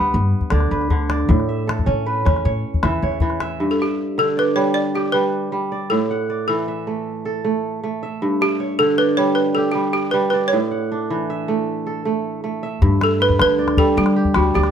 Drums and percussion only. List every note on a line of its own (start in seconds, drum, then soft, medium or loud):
0.41 calabash thump soft
0.50 calabash click medium
0.60 calabash click soft
0.81 calabash click soft
0.90 calabash thump medium
1.10 calabash click medium
1.30 calabash thump medium
1.40 calabash click soft
1.69 calabash click medium
1.79 calabash thump medium
2.26 calabash thump medium
2.26 calabash click medium
2.36 calabash click soft
2.74 calabash thump medium
2.83 calabash click medium
3.12 calabash click soft
3.20 calabash thump medium
3.30 calabash click soft
3.40 calabash click medium
12.82 calabash thump medium
12.82 calabash click soft
13.01 calabash click medium
13.29 calabash thump medium
13.29 calabash click soft
13.39 calabash click medium
13.68 calabash click medium
13.77 calabash thump medium
14.06 calabash click soft
14.25 calabash thump soft
14.34 calabash click medium
14.63 calabash click soft